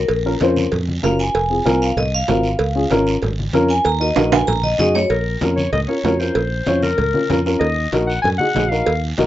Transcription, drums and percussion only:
0.09 cowbell loud
0.09 long guiro medium
0.27 high conga soft
0.40 cowbell medium
0.40 high conga medium
0.40 short guiro medium
0.56 high conga medium
0.56 short guiro medium
0.72 cowbell medium
0.72 high conga soft
0.72 low conga medium
0.72 long guiro medium
0.88 high conga medium
1.04 cowbell medium
1.04 high conga medium
1.04 low timbale medium
1.04 short guiro medium
1.19 short guiro medium
1.35 cowbell loud
1.35 long guiro medium
1.52 high conga soft
1.66 cowbell medium
1.66 high conga loud
1.66 short guiro medium
1.82 short guiro medium
1.97 cowbell medium
1.97 high conga soft
1.97 low conga medium
1.97 long guiro medium
2.28 cowbell medium
2.28 high conga medium
2.28 low conga medium
2.28 low timbale medium
2.28 short guiro medium
2.43 short guiro medium
2.59 cowbell loud
2.59 long guiro medium
2.76 high conga soft
2.90 cowbell medium
2.90 high conga loud
2.90 short guiro medium
3.07 short guiro medium
3.22 cowbell medium
3.22 high conga soft
3.22 low conga medium
3.22 long guiro medium
3.39 high conga medium
3.53 cowbell medium
3.53 high conga medium
3.53 short guiro medium
3.69 short guiro medium
3.84 cowbell loud
3.84 long guiro medium
4.01 high conga soft
4.16 cowbell medium
4.16 high conga loud
4.16 high timbale medium
4.16 short guiro medium
4.32 high conga medium
4.32 high timbale loud
4.32 short guiro medium
4.48 cowbell medium
4.48 high conga soft
4.48 low conga medium
4.48 long guiro medium
4.63 high conga medium
4.78 cowbell medium
4.78 high conga medium
4.78 short guiro medium
4.95 low timbale medium
4.95 short guiro medium
5.10 cowbell medium
5.10 long guiro medium
5.27 high conga soft
5.41 cowbell medium
5.41 high conga loud
5.41 short guiro medium
5.58 high conga medium
5.58 short guiro medium
5.73 cowbell medium
5.73 high conga soft
5.73 low conga medium
5.73 long guiro medium
6.04 cowbell medium
6.04 high conga medium
6.04 low timbale medium
6.04 short guiro medium
6.20 short guiro medium
6.35 cowbell loud
6.35 long guiro medium
6.52 high conga soft
6.66 cowbell medium
6.66 high conga loud
6.66 short guiro medium
6.82 high conga medium
6.82 short guiro medium
6.98 cowbell medium
6.98 high conga soft
6.98 low conga medium
6.98 long guiro medium
7.14 high conga medium
7.30 cowbell medium
7.30 high conga medium
7.30 low conga medium
7.30 short guiro medium
7.46 short guiro medium
7.61 cowbell medium
7.61 long guiro medium
7.77 high conga soft
7.93 cowbell medium
7.93 high conga loud
7.93 short guiro medium
8.10 short guiro medium
8.24 cowbell medium
8.24 high conga soft
8.24 low conga medium
8.24 long guiro medium
8.39 high conga medium
8.55 cowbell medium
8.55 high conga medium
8.55 low timbale medium
8.55 short guiro medium
8.72 short guiro medium
8.87 cowbell loud
8.87 long guiro medium
9.03 high conga soft
9.18 cowbell medium
9.18 high conga loud
9.18 short guiro medium

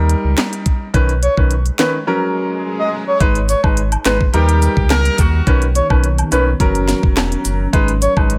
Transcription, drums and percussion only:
0.09 closed hi-hat medium
0.38 snare loud
0.38 clap medium
0.38 closed hi-hat medium
0.53 closed hi-hat medium
0.66 kick medium
0.66 closed hi-hat medium
0.94 kick loud
0.94 closed hi-hat medium
1.09 closed hi-hat soft
1.23 closed hi-hat medium
1.37 kick medium
1.51 closed hi-hat medium
1.66 closed hi-hat soft
1.79 snare loud
1.79 clap loud
1.79 closed hi-hat medium
3.21 kick loud
3.21 closed hi-hat medium
3.35 closed hi-hat soft
3.49 closed hi-hat medium
3.49 cabasa medium
3.63 kick medium
3.63 high woodblock medium
3.77 closed hi-hat medium
3.92 closed hi-hat soft
3.92 high woodblock medium
4.05 snare loud
4.05 clap loud
4.05 closed hi-hat medium
4.05 cabasa medium
4.21 kick loud
4.34 closed hi-hat medium
4.49 closed hi-hat medium
4.62 closed hi-hat medium
4.62 cabasa medium
4.77 kick loud
4.90 cross-stick loud
4.90 snare loud
4.90 clap loud
4.90 closed hi-hat medium
4.90 high woodblock medium
5.05 closed hi-hat medium
5.18 kick loud
5.18 closed hi-hat medium
5.18 cabasa medium
5.47 kick loud
5.47 closed hi-hat medium
5.62 closed hi-hat soft
5.75 closed hi-hat medium
5.75 cabasa medium
5.90 kick medium
5.90 high woodblock medium
6.04 closed hi-hat medium
6.18 closed hi-hat soft
6.18 high woodblock medium
6.32 closed hi-hat medium
6.32 cabasa medium
6.60 kick loud
6.60 closed hi-hat medium
6.75 closed hi-hat medium
6.89 snare medium
6.89 closed hi-hat medium
6.89 cabasa medium
7.03 kick loud
7.17 cross-stick loud
7.17 snare loud
7.17 clap loud
7.17 closed hi-hat medium
7.17 high woodblock medium
7.32 closed hi-hat medium
7.45 closed hi-hat medium
7.45 cabasa medium
7.73 kick loud
7.73 closed hi-hat medium
7.88 closed hi-hat soft
8.02 closed hi-hat medium
8.02 cabasa medium
8.17 kick medium
8.17 high woodblock medium
8.30 closed hi-hat medium

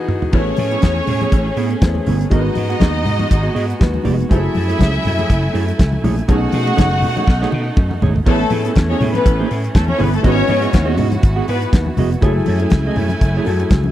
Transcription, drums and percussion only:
0.08 mid tom medium
0.22 floor tom medium
0.33 kick loud
0.33 crash medium
0.56 open hi-hat medium
0.56 muted conga soft
0.56 high conga medium
0.71 closed hi-hat medium
0.82 kick medium
0.82 snare loud
0.82 closed hi-hat medium
0.82 high conga medium
1.07 open hi-hat medium
1.07 muted conga soft
1.07 low conga medium
1.21 closed hi-hat soft
1.21 high conga medium
1.32 kick loud
1.32 closed hi-hat medium
1.32 muted conga soft
1.57 open hi-hat medium
1.57 muted conga soft
1.71 closed hi-hat soft
1.82 kick loud
1.82 snare loud
1.82 closed hi-hat medium
1.95 high conga medium
2.06 open hi-hat medium
2.06 low conga medium
2.21 closed hi-hat soft
2.31 kick loud
2.31 closed hi-hat medium
2.55 open hi-hat medium
2.55 muted conga soft
2.55 high conga medium
2.70 closed hi-hat medium
2.80 kick loud
2.80 snare loud
2.80 closed hi-hat medium
2.80 muted conga soft
2.80 high conga medium
3.05 open hi-hat medium
3.05 low conga medium
3.19 closed hi-hat soft
3.19 high conga medium
3.30 kick loud
3.30 closed hi-hat medium
3.30 muted conga soft
3.56 open hi-hat medium
3.70 closed hi-hat soft
3.81 kick loud
3.81 snare loud
3.81 closed hi-hat medium
3.94 high conga medium
4.05 open hi-hat medium
4.05 low conga medium
4.20 closed hi-hat soft
4.31 kick loud
4.31 closed hi-hat soft
4.55 open hi-hat medium
4.55 muted conga soft
4.55 high conga medium
4.70 closed hi-hat medium
4.79 kick medium
4.79 snare loud
4.79 closed hi-hat medium
4.79 muted conga soft
4.79 high conga medium
5.05 open hi-hat medium
5.05 muted conga soft
5.05 low conga medium
5.19 closed hi-hat soft
5.19 high conga medium
5.30 kick loud
5.30 closed hi-hat medium
5.55 open hi-hat medium
5.68 closed hi-hat medium
5.79 kick loud
5.79 snare loud
5.79 closed hi-hat medium
5.93 high conga medium
6.04 open hi-hat medium
6.04 low conga medium
6.19 closed hi-hat soft
6.28 kick loud
6.28 closed hi-hat soft
6.28 low conga medium
6.52 open hi-hat medium
6.52 high conga medium
6.67 closed hi-hat medium
6.77 kick medium
6.77 snare loud
6.77 closed hi-hat medium
6.77 muted conga soft
6.77 high conga medium
7.02 open hi-hat medium
7.02 muted conga soft
7.02 low conga medium
7.17 closed hi-hat soft
7.17 high conga medium
7.27 kick loud
7.27 snare medium
7.27 muted conga soft
7.42 snare medium
7.52 high tom medium
7.52 muted conga soft
7.76 kick loud
7.76 muted conga soft
7.91 mid tom medium
7.91 high conga medium
8.02 floor tom loud
8.02 low conga medium
8.16 floor tom medium
8.26 kick loud
8.26 crash medium
8.50 open hi-hat medium
8.50 muted conga soft
8.50 high conga medium
8.65 closed hi-hat medium
8.75 kick medium
8.75 snare loud
8.75 closed hi-hat medium
8.75 high conga medium
9.01 open hi-hat medium
9.01 muted conga soft
9.01 low conga medium
9.14 closed hi-hat medium
9.14 high conga medium
9.24 kick loud
9.24 closed hi-hat medium
9.24 muted conga soft
9.51 open hi-hat medium
9.64 closed hi-hat soft
9.75 kick loud
9.75 snare loud
9.75 closed hi-hat medium
9.75 muted conga soft
9.88 high conga medium
9.99 open hi-hat medium
9.99 low conga medium
10.13 closed hi-hat soft
10.24 kick loud
10.24 closed hi-hat soft
10.24 muted conga soft
10.48 open hi-hat medium
10.48 muted conga soft
10.48 high conga medium
10.62 closed hi-hat medium
10.73 kick loud
10.73 snare loud
10.73 closed hi-hat medium
10.73 muted conga soft
10.73 high conga medium
10.97 open hi-hat medium
10.97 muted conga soft
10.97 low conga medium
11.12 closed hi-hat soft
11.12 high conga medium
11.23 kick loud
11.23 closed hi-hat medium
11.48 open hi-hat medium
11.48 muted conga soft
11.62 closed hi-hat soft
11.73 kick loud
11.73 snare loud
11.73 closed hi-hat medium
11.86 high conga medium
11.97 open hi-hat medium
11.97 low conga medium
12.12 closed hi-hat soft
12.21 kick loud
12.21 closed hi-hat soft
12.21 muted conga soft
12.46 open hi-hat medium
12.46 muted conga soft
12.46 high conga medium
12.60 closed hi-hat medium
12.70 kick loud
12.70 snare loud
12.70 closed hi-hat medium
12.70 high conga medium
12.96 open hi-hat medium
12.96 low conga medium
13.09 closed hi-hat soft
13.09 high conga medium
13.21 kick loud
13.21 closed hi-hat medium
13.45 open hi-hat medium
13.45 muted conga soft
13.60 closed hi-hat soft
13.70 kick loud
13.70 snare loud
13.70 closed hi-hat medium
13.70 muted conga soft
13.84 high conga medium

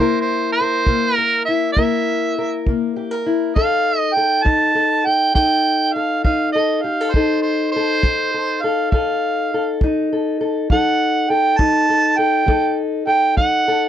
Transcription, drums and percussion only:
0.87 kick medium
1.77 kick medium
2.67 kick medium
3.56 kick medium
4.46 kick medium
5.35 kick medium
6.25 kick medium
7.14 kick medium
8.03 kick medium
8.92 kick medium
9.81 kick medium
10.70 kick medium
11.59 kick medium
12.48 kick medium
13.37 kick medium

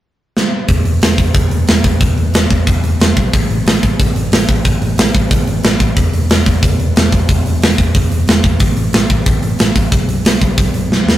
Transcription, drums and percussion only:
0.37 snare medium
0.68 kick medium
0.68 open hi-hat medium
0.85 open hi-hat soft
1.02 snare loud
1.02 open hi-hat medium
1.18 kick medium
1.18 open hi-hat medium
1.34 kick loud
1.34 open hi-hat medium
1.51 open hi-hat medium
1.67 snare medium
1.67 open hi-hat medium
1.84 kick medium
1.84 open hi-hat medium
2.01 kick loud
2.01 open hi-hat medium
2.18 open hi-hat soft
2.34 snare loud
2.34 open hi-hat medium
2.50 kick medium
2.50 open hi-hat soft
2.67 kick loud
2.67 open hi-hat medium
2.84 open hi-hat soft
3.00 snare loud
3.00 open hi-hat medium
3.17 kick medium
3.17 open hi-hat medium
3.33 kick loud
3.33 open hi-hat medium
3.50 open hi-hat soft
3.66 snare loud
3.66 open hi-hat medium
3.83 kick medium
3.83 open hi-hat medium
4.00 kick medium
4.00 open hi-hat medium
4.16 open hi-hat medium
4.32 snare loud
4.32 open hi-hat medium
4.49 kick medium
4.49 open hi-hat medium
4.65 kick medium
4.65 open hi-hat medium
4.82 open hi-hat medium
4.98 snare loud
4.98 open hi-hat medium
5.15 kick medium
5.15 open hi-hat soft
5.31 kick loud
5.31 open hi-hat medium
5.47 open hi-hat medium
5.63 snare loud
5.63 open hi-hat medium
5.80 kick medium
5.80 open hi-hat soft
5.96 kick medium
5.96 open hi-hat medium
6.13 open hi-hat medium
6.30 snare loud
6.30 open hi-hat medium
6.46 kick medium
6.46 open hi-hat soft
6.63 kick loud
6.63 open hi-hat medium
6.80 open hi-hat soft
6.96 snare loud
6.96 open hi-hat medium
7.12 kick medium
7.12 open hi-hat medium
7.29 kick medium
7.29 open hi-hat medium
7.46 open hi-hat medium
7.62 snare loud
7.62 open hi-hat medium
7.78 kick medium
7.78 open hi-hat soft
7.95 kick medium
7.95 open hi-hat medium
8.12 open hi-hat soft
8.28 snare loud
8.28 open hi-hat medium
8.44 kick medium
8.44 open hi-hat medium
8.60 kick medium
8.60 open hi-hat medium
8.77 open hi-hat medium
8.93 snare loud
8.93 open hi-hat medium
9.10 kick medium
9.10 open hi-hat soft
9.26 kick loud
9.26 open hi-hat medium
9.43 open hi-hat medium
9.59 snare loud
9.59 open hi-hat medium
9.76 kick medium
9.76 open hi-hat medium
9.92 kick loud
9.92 open hi-hat medium
10.09 open hi-hat medium
10.25 snare loud
10.25 open hi-hat medium
10.41 kick medium
10.41 open hi-hat medium
10.58 kick loud
10.58 open hi-hat medium
10.74 open hi-hat medium
10.92 snare medium
11.09 snare medium

